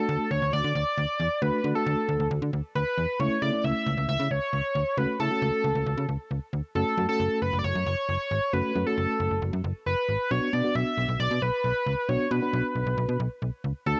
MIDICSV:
0, 0, Header, 1, 4, 480
1, 0, Start_track
1, 0, Key_signature, 2, "minor"
1, 0, Tempo, 444444
1, 1534, Time_signature, 4, 2, 24, 8
1, 15119, End_track
2, 0, Start_track
2, 0, Title_t, "Analog synth lead"
2, 0, Program_c, 0, 81
2, 0, Note_on_c, 0, 69, 102
2, 333, Note_on_c, 0, 73, 109
2, 350, Note_off_c, 0, 69, 0
2, 566, Note_off_c, 0, 73, 0
2, 573, Note_on_c, 0, 74, 113
2, 797, Note_off_c, 0, 74, 0
2, 811, Note_on_c, 0, 74, 115
2, 1533, Note_on_c, 0, 71, 101
2, 1549, Note_off_c, 0, 74, 0
2, 1886, Note_off_c, 0, 71, 0
2, 1893, Note_on_c, 0, 69, 85
2, 2005, Note_off_c, 0, 69, 0
2, 2013, Note_on_c, 0, 69, 82
2, 2460, Note_off_c, 0, 69, 0
2, 2974, Note_on_c, 0, 71, 97
2, 3453, Note_on_c, 0, 73, 106
2, 3469, Note_off_c, 0, 71, 0
2, 3688, Note_off_c, 0, 73, 0
2, 3694, Note_on_c, 0, 74, 100
2, 3934, Note_on_c, 0, 76, 110
2, 3950, Note_off_c, 0, 74, 0
2, 4408, Note_off_c, 0, 76, 0
2, 4415, Note_on_c, 0, 76, 111
2, 4656, Note_on_c, 0, 73, 107
2, 4672, Note_off_c, 0, 76, 0
2, 5374, Note_on_c, 0, 71, 97
2, 5391, Note_off_c, 0, 73, 0
2, 5609, Note_off_c, 0, 71, 0
2, 5615, Note_on_c, 0, 69, 85
2, 6531, Note_off_c, 0, 69, 0
2, 7294, Note_on_c, 0, 69, 93
2, 7629, Note_off_c, 0, 69, 0
2, 7654, Note_on_c, 0, 69, 101
2, 7989, Note_off_c, 0, 69, 0
2, 8013, Note_on_c, 0, 71, 101
2, 8181, Note_off_c, 0, 71, 0
2, 8195, Note_on_c, 0, 74, 86
2, 8252, Note_on_c, 0, 73, 111
2, 8268, Note_off_c, 0, 74, 0
2, 8487, Note_off_c, 0, 73, 0
2, 8493, Note_on_c, 0, 73, 116
2, 9212, Note_on_c, 0, 71, 104
2, 9229, Note_off_c, 0, 73, 0
2, 9567, Note_off_c, 0, 71, 0
2, 9573, Note_on_c, 0, 69, 86
2, 9685, Note_off_c, 0, 69, 0
2, 9693, Note_on_c, 0, 69, 84
2, 10140, Note_off_c, 0, 69, 0
2, 10653, Note_on_c, 0, 71, 94
2, 11135, Note_on_c, 0, 73, 105
2, 11151, Note_off_c, 0, 71, 0
2, 11375, Note_on_c, 0, 74, 103
2, 11391, Note_off_c, 0, 73, 0
2, 11614, Note_on_c, 0, 76, 116
2, 11630, Note_off_c, 0, 74, 0
2, 12088, Note_off_c, 0, 76, 0
2, 12095, Note_on_c, 0, 74, 105
2, 12334, Note_on_c, 0, 71, 103
2, 12351, Note_off_c, 0, 74, 0
2, 13054, Note_on_c, 0, 73, 102
2, 13071, Note_off_c, 0, 71, 0
2, 13295, Note_on_c, 0, 71, 88
2, 13311, Note_off_c, 0, 73, 0
2, 14254, Note_off_c, 0, 71, 0
2, 14973, Note_on_c, 0, 69, 97
2, 15119, Note_off_c, 0, 69, 0
2, 15119, End_track
3, 0, Start_track
3, 0, Title_t, "FM electric piano"
3, 0, Program_c, 1, 5
3, 0, Note_on_c, 1, 57, 74
3, 0, Note_on_c, 1, 62, 70
3, 0, Note_on_c, 1, 66, 87
3, 774, Note_off_c, 1, 66, 0
3, 775, Note_off_c, 1, 57, 0
3, 775, Note_off_c, 1, 62, 0
3, 1533, Note_on_c, 1, 62, 71
3, 1533, Note_on_c, 1, 66, 82
3, 1534, Note_on_c, 1, 57, 75
3, 1734, Note_off_c, 1, 57, 0
3, 1734, Note_off_c, 1, 62, 0
3, 1734, Note_off_c, 1, 66, 0
3, 1774, Note_on_c, 1, 57, 74
3, 1774, Note_on_c, 1, 62, 72
3, 1774, Note_on_c, 1, 66, 81
3, 1874, Note_off_c, 1, 57, 0
3, 1874, Note_off_c, 1, 62, 0
3, 1874, Note_off_c, 1, 66, 0
3, 1894, Note_on_c, 1, 57, 74
3, 1894, Note_on_c, 1, 62, 69
3, 1894, Note_on_c, 1, 66, 86
3, 2694, Note_off_c, 1, 57, 0
3, 2694, Note_off_c, 1, 62, 0
3, 2694, Note_off_c, 1, 66, 0
3, 3453, Note_on_c, 1, 61, 72
3, 3454, Note_on_c, 1, 57, 77
3, 3454, Note_on_c, 1, 64, 88
3, 3654, Note_off_c, 1, 57, 0
3, 3654, Note_off_c, 1, 61, 0
3, 3654, Note_off_c, 1, 64, 0
3, 3694, Note_on_c, 1, 57, 79
3, 3694, Note_on_c, 1, 61, 70
3, 3694, Note_on_c, 1, 64, 84
3, 3794, Note_off_c, 1, 57, 0
3, 3794, Note_off_c, 1, 61, 0
3, 3794, Note_off_c, 1, 64, 0
3, 3813, Note_on_c, 1, 57, 77
3, 3813, Note_on_c, 1, 64, 82
3, 3814, Note_on_c, 1, 61, 71
3, 4614, Note_off_c, 1, 57, 0
3, 4614, Note_off_c, 1, 61, 0
3, 4614, Note_off_c, 1, 64, 0
3, 5374, Note_on_c, 1, 57, 78
3, 5374, Note_on_c, 1, 61, 70
3, 5374, Note_on_c, 1, 66, 85
3, 5574, Note_off_c, 1, 57, 0
3, 5574, Note_off_c, 1, 61, 0
3, 5574, Note_off_c, 1, 66, 0
3, 5614, Note_on_c, 1, 57, 77
3, 5614, Note_on_c, 1, 61, 70
3, 5614, Note_on_c, 1, 64, 84
3, 5714, Note_off_c, 1, 57, 0
3, 5714, Note_off_c, 1, 61, 0
3, 5714, Note_off_c, 1, 64, 0
3, 5733, Note_on_c, 1, 57, 76
3, 5733, Note_on_c, 1, 61, 70
3, 5733, Note_on_c, 1, 66, 85
3, 6534, Note_off_c, 1, 57, 0
3, 6534, Note_off_c, 1, 61, 0
3, 6534, Note_off_c, 1, 66, 0
3, 7293, Note_on_c, 1, 57, 77
3, 7293, Note_on_c, 1, 61, 71
3, 7293, Note_on_c, 1, 66, 82
3, 7493, Note_off_c, 1, 57, 0
3, 7493, Note_off_c, 1, 66, 0
3, 7494, Note_off_c, 1, 61, 0
3, 7534, Note_on_c, 1, 57, 78
3, 7534, Note_on_c, 1, 66, 82
3, 7535, Note_on_c, 1, 61, 68
3, 7634, Note_off_c, 1, 57, 0
3, 7634, Note_off_c, 1, 61, 0
3, 7634, Note_off_c, 1, 66, 0
3, 7654, Note_on_c, 1, 66, 85
3, 7655, Note_on_c, 1, 57, 77
3, 7655, Note_on_c, 1, 61, 72
3, 8454, Note_off_c, 1, 66, 0
3, 8455, Note_off_c, 1, 57, 0
3, 8455, Note_off_c, 1, 61, 0
3, 9214, Note_on_c, 1, 57, 76
3, 9214, Note_on_c, 1, 61, 68
3, 9214, Note_on_c, 1, 66, 85
3, 9414, Note_off_c, 1, 57, 0
3, 9414, Note_off_c, 1, 61, 0
3, 9414, Note_off_c, 1, 66, 0
3, 9454, Note_on_c, 1, 57, 76
3, 9454, Note_on_c, 1, 61, 70
3, 9454, Note_on_c, 1, 66, 83
3, 9554, Note_off_c, 1, 57, 0
3, 9554, Note_off_c, 1, 61, 0
3, 9554, Note_off_c, 1, 66, 0
3, 9574, Note_on_c, 1, 57, 76
3, 9574, Note_on_c, 1, 61, 69
3, 9575, Note_on_c, 1, 66, 85
3, 10374, Note_off_c, 1, 57, 0
3, 10374, Note_off_c, 1, 61, 0
3, 10375, Note_off_c, 1, 66, 0
3, 11134, Note_on_c, 1, 59, 78
3, 11134, Note_on_c, 1, 62, 71
3, 11134, Note_on_c, 1, 66, 85
3, 11334, Note_off_c, 1, 59, 0
3, 11334, Note_off_c, 1, 62, 0
3, 11334, Note_off_c, 1, 66, 0
3, 11373, Note_on_c, 1, 59, 75
3, 11373, Note_on_c, 1, 66, 83
3, 11374, Note_on_c, 1, 62, 72
3, 11474, Note_off_c, 1, 59, 0
3, 11474, Note_off_c, 1, 62, 0
3, 11474, Note_off_c, 1, 66, 0
3, 11494, Note_on_c, 1, 59, 77
3, 11494, Note_on_c, 1, 62, 68
3, 11494, Note_on_c, 1, 66, 86
3, 12294, Note_off_c, 1, 62, 0
3, 12294, Note_off_c, 1, 66, 0
3, 12295, Note_off_c, 1, 59, 0
3, 13053, Note_on_c, 1, 59, 76
3, 13053, Note_on_c, 1, 62, 71
3, 13054, Note_on_c, 1, 66, 86
3, 13253, Note_off_c, 1, 59, 0
3, 13254, Note_off_c, 1, 62, 0
3, 13254, Note_off_c, 1, 66, 0
3, 13293, Note_on_c, 1, 59, 78
3, 13293, Note_on_c, 1, 62, 70
3, 13293, Note_on_c, 1, 66, 80
3, 13394, Note_off_c, 1, 59, 0
3, 13394, Note_off_c, 1, 62, 0
3, 13394, Note_off_c, 1, 66, 0
3, 13414, Note_on_c, 1, 59, 79
3, 13414, Note_on_c, 1, 62, 70
3, 13414, Note_on_c, 1, 66, 88
3, 14214, Note_off_c, 1, 59, 0
3, 14214, Note_off_c, 1, 62, 0
3, 14214, Note_off_c, 1, 66, 0
3, 14973, Note_on_c, 1, 57, 76
3, 14973, Note_on_c, 1, 62, 73
3, 14973, Note_on_c, 1, 69, 85
3, 14974, Note_on_c, 1, 66, 71
3, 15119, Note_off_c, 1, 57, 0
3, 15119, Note_off_c, 1, 62, 0
3, 15119, Note_off_c, 1, 66, 0
3, 15119, Note_off_c, 1, 69, 0
3, 15119, End_track
4, 0, Start_track
4, 0, Title_t, "FM bass"
4, 0, Program_c, 2, 39
4, 93, Note_on_c, 2, 38, 113
4, 188, Note_off_c, 2, 38, 0
4, 333, Note_on_c, 2, 38, 101
4, 428, Note_off_c, 2, 38, 0
4, 453, Note_on_c, 2, 38, 94
4, 548, Note_off_c, 2, 38, 0
4, 573, Note_on_c, 2, 38, 107
4, 668, Note_off_c, 2, 38, 0
4, 693, Note_on_c, 2, 50, 92
4, 788, Note_off_c, 2, 50, 0
4, 813, Note_on_c, 2, 38, 97
4, 908, Note_off_c, 2, 38, 0
4, 1053, Note_on_c, 2, 38, 100
4, 1148, Note_off_c, 2, 38, 0
4, 1293, Note_on_c, 2, 40, 98
4, 1388, Note_off_c, 2, 40, 0
4, 1532, Note_on_c, 2, 38, 108
4, 1627, Note_off_c, 2, 38, 0
4, 1773, Note_on_c, 2, 50, 100
4, 1868, Note_off_c, 2, 50, 0
4, 2013, Note_on_c, 2, 38, 113
4, 2108, Note_off_c, 2, 38, 0
4, 2253, Note_on_c, 2, 38, 102
4, 2348, Note_off_c, 2, 38, 0
4, 2374, Note_on_c, 2, 38, 96
4, 2468, Note_off_c, 2, 38, 0
4, 2494, Note_on_c, 2, 38, 109
4, 2588, Note_off_c, 2, 38, 0
4, 2615, Note_on_c, 2, 50, 96
4, 2709, Note_off_c, 2, 50, 0
4, 2734, Note_on_c, 2, 38, 100
4, 2828, Note_off_c, 2, 38, 0
4, 2974, Note_on_c, 2, 38, 106
4, 3068, Note_off_c, 2, 38, 0
4, 3213, Note_on_c, 2, 40, 92
4, 3308, Note_off_c, 2, 40, 0
4, 3452, Note_on_c, 2, 37, 117
4, 3547, Note_off_c, 2, 37, 0
4, 3693, Note_on_c, 2, 49, 94
4, 3788, Note_off_c, 2, 49, 0
4, 3933, Note_on_c, 2, 37, 101
4, 4028, Note_off_c, 2, 37, 0
4, 4173, Note_on_c, 2, 37, 102
4, 4268, Note_off_c, 2, 37, 0
4, 4293, Note_on_c, 2, 37, 97
4, 4388, Note_off_c, 2, 37, 0
4, 4412, Note_on_c, 2, 37, 103
4, 4507, Note_off_c, 2, 37, 0
4, 4533, Note_on_c, 2, 49, 103
4, 4628, Note_off_c, 2, 49, 0
4, 4653, Note_on_c, 2, 37, 99
4, 4748, Note_off_c, 2, 37, 0
4, 4893, Note_on_c, 2, 37, 97
4, 4988, Note_off_c, 2, 37, 0
4, 5133, Note_on_c, 2, 38, 97
4, 5228, Note_off_c, 2, 38, 0
4, 5372, Note_on_c, 2, 37, 112
4, 5467, Note_off_c, 2, 37, 0
4, 5612, Note_on_c, 2, 49, 103
4, 5707, Note_off_c, 2, 49, 0
4, 5852, Note_on_c, 2, 37, 106
4, 5947, Note_off_c, 2, 37, 0
4, 6093, Note_on_c, 2, 37, 101
4, 6188, Note_off_c, 2, 37, 0
4, 6213, Note_on_c, 2, 37, 98
4, 6308, Note_off_c, 2, 37, 0
4, 6333, Note_on_c, 2, 37, 103
4, 6428, Note_off_c, 2, 37, 0
4, 6453, Note_on_c, 2, 49, 100
4, 6548, Note_off_c, 2, 49, 0
4, 6573, Note_on_c, 2, 37, 94
4, 6668, Note_off_c, 2, 37, 0
4, 6813, Note_on_c, 2, 37, 92
4, 6908, Note_off_c, 2, 37, 0
4, 7053, Note_on_c, 2, 38, 96
4, 7148, Note_off_c, 2, 38, 0
4, 7292, Note_on_c, 2, 30, 111
4, 7387, Note_off_c, 2, 30, 0
4, 7532, Note_on_c, 2, 42, 104
4, 7628, Note_off_c, 2, 42, 0
4, 7772, Note_on_c, 2, 30, 108
4, 7867, Note_off_c, 2, 30, 0
4, 8012, Note_on_c, 2, 30, 100
4, 8107, Note_off_c, 2, 30, 0
4, 8133, Note_on_c, 2, 30, 99
4, 8228, Note_off_c, 2, 30, 0
4, 8253, Note_on_c, 2, 30, 110
4, 8348, Note_off_c, 2, 30, 0
4, 8373, Note_on_c, 2, 42, 101
4, 8468, Note_off_c, 2, 42, 0
4, 8493, Note_on_c, 2, 30, 106
4, 8588, Note_off_c, 2, 30, 0
4, 8733, Note_on_c, 2, 30, 96
4, 8828, Note_off_c, 2, 30, 0
4, 8973, Note_on_c, 2, 32, 101
4, 9068, Note_off_c, 2, 32, 0
4, 9214, Note_on_c, 2, 30, 111
4, 9308, Note_off_c, 2, 30, 0
4, 9454, Note_on_c, 2, 42, 92
4, 9548, Note_off_c, 2, 42, 0
4, 9693, Note_on_c, 2, 30, 105
4, 9788, Note_off_c, 2, 30, 0
4, 9933, Note_on_c, 2, 30, 105
4, 10027, Note_off_c, 2, 30, 0
4, 10053, Note_on_c, 2, 30, 90
4, 10148, Note_off_c, 2, 30, 0
4, 10173, Note_on_c, 2, 30, 105
4, 10268, Note_off_c, 2, 30, 0
4, 10293, Note_on_c, 2, 42, 98
4, 10388, Note_off_c, 2, 42, 0
4, 10413, Note_on_c, 2, 30, 107
4, 10508, Note_off_c, 2, 30, 0
4, 10653, Note_on_c, 2, 30, 98
4, 10748, Note_off_c, 2, 30, 0
4, 10893, Note_on_c, 2, 32, 88
4, 10988, Note_off_c, 2, 32, 0
4, 11133, Note_on_c, 2, 35, 108
4, 11228, Note_off_c, 2, 35, 0
4, 11373, Note_on_c, 2, 47, 98
4, 11468, Note_off_c, 2, 47, 0
4, 11613, Note_on_c, 2, 35, 111
4, 11708, Note_off_c, 2, 35, 0
4, 11853, Note_on_c, 2, 35, 97
4, 11948, Note_off_c, 2, 35, 0
4, 11973, Note_on_c, 2, 35, 101
4, 12068, Note_off_c, 2, 35, 0
4, 12093, Note_on_c, 2, 35, 105
4, 12188, Note_off_c, 2, 35, 0
4, 12214, Note_on_c, 2, 47, 107
4, 12308, Note_off_c, 2, 47, 0
4, 12334, Note_on_c, 2, 35, 99
4, 12428, Note_off_c, 2, 35, 0
4, 12573, Note_on_c, 2, 35, 94
4, 12668, Note_off_c, 2, 35, 0
4, 12814, Note_on_c, 2, 37, 96
4, 12908, Note_off_c, 2, 37, 0
4, 13054, Note_on_c, 2, 35, 104
4, 13148, Note_off_c, 2, 35, 0
4, 13293, Note_on_c, 2, 47, 108
4, 13388, Note_off_c, 2, 47, 0
4, 13534, Note_on_c, 2, 35, 106
4, 13628, Note_off_c, 2, 35, 0
4, 13773, Note_on_c, 2, 35, 102
4, 13868, Note_off_c, 2, 35, 0
4, 13894, Note_on_c, 2, 35, 101
4, 13989, Note_off_c, 2, 35, 0
4, 14014, Note_on_c, 2, 35, 109
4, 14108, Note_off_c, 2, 35, 0
4, 14134, Note_on_c, 2, 47, 96
4, 14228, Note_off_c, 2, 47, 0
4, 14253, Note_on_c, 2, 35, 109
4, 14348, Note_off_c, 2, 35, 0
4, 14493, Note_on_c, 2, 35, 98
4, 14588, Note_off_c, 2, 35, 0
4, 14733, Note_on_c, 2, 37, 93
4, 14828, Note_off_c, 2, 37, 0
4, 14973, Note_on_c, 2, 38, 103
4, 15068, Note_off_c, 2, 38, 0
4, 15119, End_track
0, 0, End_of_file